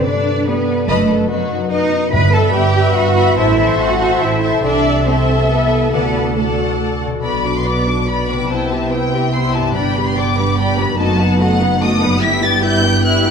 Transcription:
Already playing: timpani G2, harp G2 D3 G3 G4 B4
0.05 harp B3, cello section D4, french horn section B4 D5, violin section D5
0.27 harp D4
0.47 cello section B3, harp G4, violin section B4, french horn section B4 D5
0.68 harp D4
0.88 double bass section F#1, harp F#2, cello section A3, violin section A4 D#5 B5, french horn section B4 D#5, viola section B4
1.10 harp F#3
1.30 cello section F#3, harp B3, violin section F#4, french horn section B4 D#5
1.51 harp D#4
1.71 cello section D#4, french horn section B4 D#5, harp B4, violin section D#5
1.92 harp D#4
2.11 double bass section G1, harp G2, timpani G2, french horn section B4 E5, cello section B4, violin section B5
2.33 harp G3, cello section A4, viola section B4 E5, violin section E5 A5 B5
2.54 double bass section G1, harp B3, cello section G4, french horn section B4 E5, violin section G5
2.74 harp E4, viola section B4 E5, violin section E5 B5
2.95 double bass section G1, cello section F#4, harp B4, violin section F#5
3.16 harp E4, viola section B4 E5, violin section E5 B5
3.37 double bass section A1, harp A2, cello section E4, viola section C5 E5, french horn section C5 E5, violin section E5 A5
3.58 harp E3, viola section C5 E5, violin section E5 A5
3.79 double bass section A1, harp C4, cello section F#4, violin section F#5
4.00 harp E4, viola section C5 E5, violin section E5 A5
4.21 double bass section A1, cello section E4, harp A4, french horn section C5 E5, violin section E5
4.42 harp E4, viola section C5 E5, violin section E5 A5
4.63 double bass section C2, harp C3, cello section D4, french horn section A4 E5, viola section A4 E5, violin section D5 E5 A5
4.85 harp C4
5.06 harp A3, cello section C4, french horn section A4 E5, viola section A4 E5, violin section C5 E5 A5
5.28 harp E4
5.49 cello section B3, harp A4, violin section B4
5.71 harp E4
5.93 double bass section D2, harp D3, cello section B3, french horn section F#4 A4, viola section A4 D5, violin section B4 F#5 A5
6.15 harp D4
6.36 cello section A3, harp A3, french horn section F#4 A4, viola section A4 D5, violin section A4 F#5 A5
6.58 harp F#4
6.80 harp A4
7.02 harp B2 F#4
7.10 harp D4
7.15 harp F#4
7.19 harp B4
7.23 double bass section B1, cello section B2, viola section B3 F#4, french horn section B3 F#4, violin section D5 B5
7.45 viola section D4, violin section B4 D6
7.57 violin section C6
7.66 viola section B3 F#4, violin section D5 B5 D6
7.87 viola section D4, violin section B4 D6
8.08 viola section B3 F#4, violin section D5 B5
8.29 harp C3, viola section D4, violin section B4 D6
8.37 harp C4
8.42 harp E4
8.46 harp B4
8.50 double bass section C2, cello section C3, viola section B3 E4, french horn section E4, violin section C5 G5 A5
8.71 viola section C4 G4, violin section B4 E5
8.92 viola section B3 E4, violin section C5 G5
9.13 viola section C4 G4, violin section B4 E5
9.33 viola section B3 E4, violin section C5 G5 C6
9.54 harp G2, viola section C4 G4, violin section B4 E5 A5
9.62 harp B3
9.66 harp D4
9.71 french horn section B3, harp B4, violin section B5
9.75 double bass section G1, cello section G2, viola section G3 D4, french horn section D4, violin section D5 G5
9.96 viola section B3 G4, violin section B4 B5
10.07 violin section C6
10.16 viola section G3 D4, violin section D5 G5 D6
10.37 viola section B3 G4, violin section B4 B5
10.57 viola section G3 D4, violin section D5 G5 B5
10.78 harp F#2, viola section B3 G4, violin section B4 B5
10.86 harp B3
10.90 harp D#4
10.94 viola section F#4, harp B4, violin section A5
10.99 double bass section F#1, cello section F#2, viola section A3, french horn section D#4, violin section A4 D#5
11.19 viola section B3 D#4, violin section B4 F#5
11.39 viola section A3 F#4, violin section A4 D#5 F#5
11.60 viola section B3 D#4, violin section B4 F#5
11.81 viola section A3 F#4, violin section A4 D#5 D#6
12.01 harp G2, viola section B3 D#4, violin section B4 F#5
12.08 harp B3
12.13 harp E4
12.17 viola section G3 E4, harp B4
12.22 double bass section G1, cello section G2, french horn section B3 E4, violin section G4 E5 B6
12.42 viola section B3 G4, violin section B4 G5 A6
12.62 viola section G3 E4, violin section G4 E5 G6
12.83 viola section B3 G4, violin section B4 G5
13.04 viola section G3 E4, violin section G4 E5 F#6
13.25 viola section B3 G4, violin section B4 G5

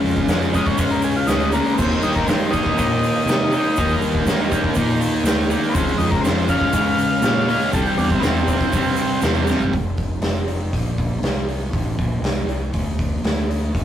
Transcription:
Already playing: distorted electric guitar C#3 G#3 C#4
0.04 fingered electric bass F2, open hi-hat
0.16 kick, snare, shaker
0.27 fingered electric bass F2, distorted electric guitar C#3 G#3 C#4, snare, open hi-hat, shaker
0.42 shaker
0.54 distorted electric guitar C#3 G#3 C#4, transistor combo organ D#5, kick, open hi-hat, shaker
0.65 transistor combo organ C#5, kick, shaker
0.78 fingered electric bass G#2, distorted electric guitar C#3 G#3 C#4, transistor combo organ C5, kick, open hi-hat, shaker
0.90 transistor combo organ A#4, shaker
1.02 transistor combo organ G#4, open hi-hat, shaker
1.16 transistor combo organ F4, shaker
1.27 fingered electric bass D2, distorted electric guitar C#3 G#3 C#4, transistor combo organ D#4, snare, open hi-hat, shaker
1.40 shaker
1.52 distorted electric guitar C#3 G#3 C#4, transistor combo organ A#3, open hi-hat, shaker
1.65 shaker
1.73 transistor combo organ B3
1.78 fingered electric bass D#2, distorted electric guitar D#3 A#3 D#4, transistor combo organ C4, kick, crash, shaker
1.91 shaker
2.02 fingered electric bass G2, transistor combo organ D#4, open hi-hat, shaker
2.15 transistor combo organ A#4, kick, snare, shaker
2.27 fingered electric bass G2, distorted electric guitar D#3 A#3 D#4, transistor combo organ C5, snare, open hi-hat, shaker
2.51 distorted electric guitar D#3 A#3 D#4, transistor combo organ D#5, kick, open hi-hat, shaker
2.66 kick
2.77 fingered electric bass A#2, distorted electric guitar D#3 A#3 D#4, kick, open hi-hat, shaker
3.03 open hi-hat, shaker
3.26 fingered electric bass C3, distorted electric guitar D#3 A#3 D#4, open hi-hat, shaker
3.30 snare
3.52 distorted electric guitar D#3 A#3 D#4, open hi-hat, shaker
3.76 fingered electric bass D#2, distorted electric guitar D#3 A#3 D#4, kick, open hi-hat, shaker
3.89 shaker
4.01 fingered electric bass G2, open hi-hat, shaker
4.15 kick, snare
4.26 fingered electric bass G2, distorted electric guitar D#3 A#3 D#4, snare, open hi-hat, shaker
4.51 distorted electric guitar D#3 A#3 D#4, kick, open hi-hat, shaker
4.64 kick
4.74 fingered electric bass A#2, distorted electric guitar D#3 A#3 D#4, kick, open hi-hat, shaker
5.01 open hi-hat, shaker
5.24 fingered electric bass D2, distorted electric guitar D#3 A#3 D#4, snare, open hi-hat, shaker
5.50 distorted electric guitar D#3 A#3 D#4, open hi-hat, shaker
5.70 transistor combo organ B3 C4
5.75 fingered electric bass C#2, distorted electric guitar C#3 G#3 C#4, kick, open hi-hat, shaker
5.88 shaker
5.98 fingered electric bass F2, transistor combo organ D#4, open hi-hat, shaker
6.11 transistor combo organ A#4, kick, snare, shaker
6.21 fingered electric bass F2, distorted electric guitar C#3, transistor combo organ C5, open hi-hat, shaker
6.25 distorted electric guitar G#3 C#4, snare
6.48 distorted electric guitar C#3 G#3 C#4, transistor combo organ F5, kick, open hi-hat, shaker
6.61 kick
6.73 fingered electric bass G#2, distorted electric guitar C#3 G#3 C#4, kick, open hi-hat, shaker
6.98 open hi-hat, shaker
7.22 fingered electric bass A#2, distorted electric guitar C#3 G#3 C#4, snare, open hi-hat, shaker
7.48 distorted electric guitar C#3 G#3 C#4, open hi-hat
7.72 fingered electric bass C2, distorted electric guitar C3 G3 C4, transistor combo organ A4, kick, open hi-hat, shaker
7.86 transistor combo organ G4, shaker
7.97 fingered electric bass E2, transistor combo organ D4, open hi-hat, shaker
8.10 transistor combo organ C4, kick, snare, shaker
8.20 fingered electric bass E2, distorted electric guitar C3 G3 C4, transistor combo organ B3, snare, open hi-hat, shaker
8.24 transistor combo organ C4
8.36 shaker
8.47 distorted electric guitar C3 G3 C4, kick, open hi-hat, shaker
8.61 kick, shaker
8.72 fingered electric bass G2, distorted electric guitar C3 G3 C4, kick, open hi-hat, shaker
8.85 shaker
8.96 open hi-hat, shaker
9.21 fingered electric bass E2, distorted electric guitar C3 G3 C4, snare, open hi-hat, shaker
9.35 shaker
9.47 distorted electric guitar C3 G3 C4, snare, shaker
9.60 floor tom, shaker
9.73 fingered electric bass F1, kick, open hi-hat
9.97 kick, open hi-hat
10.21 fingered electric bass F1, snare, open hi-hat
10.48 open hi-hat
10.73 fingered electric bass A#1, kick, open hi-hat
10.98 kick, open hi-hat
11.22 fingered electric bass C2, snare, open hi-hat
11.49 open hi-hat
11.73 fingered electric bass A1, kick, open hi-hat
11.98 fingered electric bass A#1, kick, open hi-hat
12.22 fingered electric bass C2, snare, open hi-hat
12.46 fingered electric bass C2, open hi-hat
12.73 fingered electric bass D2, kick, open hi-hat
12.99 kick, open hi-hat
13.24 fingered electric bass D2, snare, open hi-hat
13.51 open hi-hat
13.75 fingered electric bass F1, kick, open hi-hat

